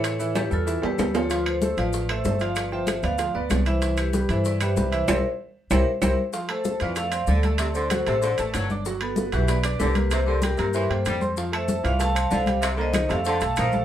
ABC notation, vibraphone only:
X:1
M:4/4
L:1/8
Q:1/4=191
K:Ddor
V:1 name="Vibraphone"
[A^c]2 [GB] [FA]2 [GB]2 [Ac] | [FB] [Ac]2 [Bd]2 [ce]2 [df] | [Bd] [ce]2 [df]2 [Bd]2 [ce]- | [ce] [GB]2 [Ac] [Bd] [ce]2 [ce] |
[_Bce] z3 [Bce] z [Bce] z | z [Ac]2 [Bd] [df] [df] [Ad] [Ad]- | [Ad] [Ac] [Ac] [Ac]2 [Bd]2 z | z [^FA]2 [GB] [Bd] [Bd] [GB]2 |
[Gc] [G_B] [GB] [GB]2 [Ac]2 z | z [ce]2 [df] [fa] [fa] [cf]2 | z [c_e]2 [df] [fa] [fa] [cf]2 |]